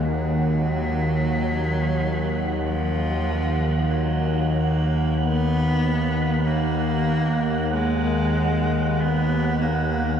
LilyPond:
<<
  \new Staff \with { instrumentName = "Synth texture" } { \time 4/4 \key ees \minor \tempo 4 = 47 ges''1~ | ges''1 | }
  \new Staff \with { instrumentName = "Cello" } { \time 4/4 \key ees \minor ges2 f4 ges8 bes8 | ces'4 bes4 aes4 ces'8 bes8 | }
  \new Staff \with { instrumentName = "Synth drone" } { \clef bass \time 4/4 \key ees \minor ees,1~ | ees,1 | }
>>